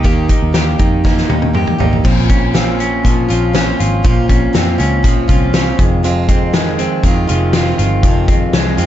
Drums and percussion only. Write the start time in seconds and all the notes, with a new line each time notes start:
0.04 kick, closed hi-hat
0.29 kick, closed hi-hat
0.54 snare, closed hi-hat
0.79 kick, closed hi-hat
1.05 kick, snare
1.18 snare
1.30 high tom
1.42 high tom
1.55 mid tom
1.67 mid tom
1.80 floor tom
1.93 floor tom
2.05 kick, crash
2.30 kick, closed hi-hat
2.55 snare, closed hi-hat
2.80 closed hi-hat
3.05 kick, closed hi-hat
3.30 closed hi-hat
3.55 snare, closed hi-hat
3.80 closed hi-hat
4.05 kick, closed hi-hat
4.29 kick, closed hi-hat
4.55 snare, closed hi-hat
4.80 closed hi-hat
5.04 kick, closed hi-hat
5.29 kick, closed hi-hat
5.54 snare, closed hi-hat
5.79 kick, closed hi-hat
6.04 closed hi-hat
6.29 kick, closed hi-hat
6.54 snare, closed hi-hat
6.79 closed hi-hat
7.04 kick, closed hi-hat
7.29 closed hi-hat
7.53 snare, closed hi-hat
7.79 closed hi-hat
8.03 kick, closed hi-hat
8.28 kick, closed hi-hat
8.53 snare, closed hi-hat
8.78 closed hi-hat